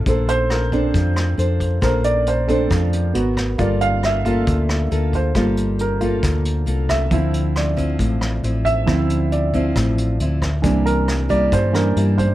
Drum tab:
HH |xxxxxxxx|xxxxxxxx|xxxxxxxx|xxxxxxxx|
SD |--r--r--|r---r--r|--r--r--|r---r--r|
BD |o--oo--o|o--oo--o|o--oo--o|o--oo--o|

HH |xxxxxxxx|xxxxxxxx|xxxxxxxx|
SD |--r--r--|r---r--r|--r--r--|
BD |o--oo--o|o--oo--o|o--oo--o|